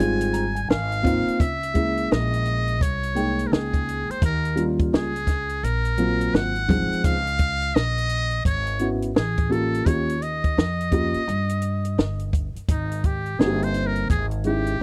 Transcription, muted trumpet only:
0.00 0.70 G#5 loud
0.70 1.42 F5 loud
1.40 2.13 E5 medium
2.12 2.83 D#5 medium
2.82 3.48 C#5 loud
3.47 3.54 A#4 medium
3.52 4.12 G#4 medium
4.11 4.23 C5 medium
4.25 4.66 A#4 medium
4.94 5.65 G#4 medium
5.64 6.37 A#4 medium
6.36 7.07 F#5 loud
7.05 7.76 F5 loud
7.75 8.45 D#5 loud
8.46 8.88 C#5 loud
9.16 9.54 G#4 medium
9.52 9.89 A4 medium
9.88 10.24 C#5 medium
10.22 12.34 D#5 medium
12.70 13.07 D#4 medium
13.06 13.41 G4 medium
13.40 13.65 G#4 medium
13.64 13.88 C5 medium
13.87 14.10 A#4 medium
14.10 14.26 G#4 medium
14.46 14.83 G4 medium

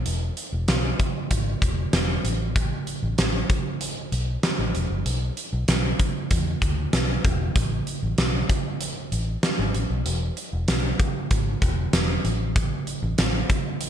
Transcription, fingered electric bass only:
0.06 0.29 E1 medium
0.52 0.64 E1 medium
0.68 0.92 B1 medium
1.31 1.54 G#1 medium
1.62 1.85 E1 medium
1.93 2.17 E1 medium
2.24 2.71 A1 medium
3.03 3.14 A1 medium
3.18 3.42 A1 medium
4.12 4.35 B1 medium
4.59 4.71 A1 medium
4.75 4.86 E1 medium
4.90 5.02 F#1 medium
5.06 5.29 B1 loud
5.53 5.64 B1 medium
5.68 5.92 B1 medium
6.31 6.54 E2 medium
6.62 6.85 D2 medium
6.93 7.17 B1 medium
7.25 7.48 E1 medium
7.56 7.79 A1 medium
8.03 8.14 A1 medium
8.18 8.42 B1 medium
9.12 9.35 A1 medium
9.59 9.71 G#1 medium
9.74 9.86 A1 medium
9.90 10.02 B1 medium
10.06 10.29 E1 loud
10.53 10.64 E1 medium
10.68 10.92 B1 medium
11.31 11.54 G#1 medium
11.62 11.85 E1 medium
11.93 12.17 E1 medium
12.25 12.71 A1 medium
13.02 13.14 A1 loud
13.18 13.42 A1 medium

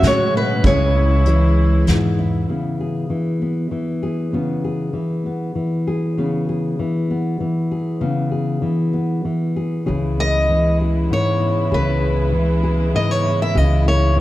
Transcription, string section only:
0.00 2.44 C#3 medium
0.00 2.44 G#3 medium
0.00 0.61 F#4 medium
0.64 2.46 E3 medium
0.64 2.47 E4 medium
9.87 14.21 C#3 medium
9.87 14.21 G#3 medium
9.87 14.21 B3 soft
9.87 14.21 E4 medium

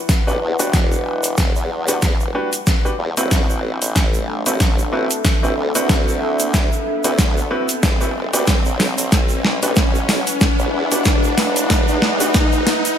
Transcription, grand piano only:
0.27 0.34 D4 medium
0.27 0.34 F#4 medium
0.27 0.34 G4 medium
0.27 0.34 B4 medium
0.59 1.84 D4 medium
0.59 1.84 F#4 medium
0.59 1.84 G4 medium
0.59 1.84 B4 medium
1.88 1.95 D4 medium
1.88 1.95 F#4 medium
1.88 1.95 G4 medium
1.88 1.95 B4 medium
2.35 2.49 D4 medium
2.35 2.49 F#4 medium
2.35 2.49 G4 medium
2.35 2.49 B4 loud
2.85 2.92 D4 medium
2.85 2.92 F#4 medium
2.85 2.92 G4 medium
2.85 2.92 B4 medium
3.17 4.42 C4 medium
3.17 4.42 E4 medium
3.17 4.42 F#4 medium
3.17 4.42 B4 medium
4.46 4.53 C4 medium
4.46 4.53 E4 medium
4.46 4.53 F#4 medium
4.46 4.53 B4 medium
4.92 5.07 C4 medium
4.92 5.07 E4 medium
4.92 5.07 F#4 medium
4.92 5.07 B4 medium
5.43 5.50 C4 medium
5.43 5.50 E4 medium
5.43 5.50 F#4 medium
5.43 5.50 B4 medium
5.75 7.00 C4 medium
5.75 7.00 E4 medium
5.75 7.00 F#4 medium
5.75 7.00 B4 medium
7.04 7.11 C4 medium
7.04 7.11 E4 medium
7.04 7.11 F#4 medium
7.04 7.11 B4 medium
7.51 7.65 C4 medium
7.51 7.65 E4 medium
7.51 7.65 F#4 medium
7.51 7.65 B4 loud
8.01 8.08 C4 medium
8.01 8.08 E4 medium
8.01 8.08 F#4 medium
8.01 8.08 B4 medium
8.33 8.48 D4 medium
8.33 8.48 F#4 medium
8.33 8.48 G4 medium
8.33 8.48 B4 medium
9.63 9.69 D4 medium
9.63 9.69 F#4 medium
9.63 9.69 G4 medium
9.63 9.69 B4 medium
10.92 10.98 D4 medium
10.92 10.98 F#4 medium
10.92 10.98 G4 medium
10.92 10.98 B4 medium
12.21 12.27 D4 medium
12.21 12.27 F#4 medium
12.21 12.27 G4 medium
12.21 12.27 B4 medium

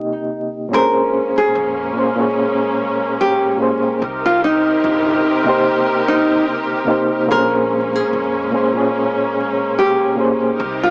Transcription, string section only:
0.72 3.98 G#3 medium
0.72 3.98 A#3 medium
0.72 3.98 C#4 medium
4.01 7.27 C3 medium
4.01 7.27 C4 medium
4.01 7.27 D#4 medium
4.01 7.27 G4 medium
4.01 7.27 A#4 medium
7.29 10.55 G#3 medium
7.29 10.55 A#3 medium
7.29 10.55 C#4 medium
10.59 10.90 C3 medium
10.59 10.90 C4 medium
10.59 10.90 D#4 medium
10.59 10.90 G4 medium
10.59 10.90 A#4 medium

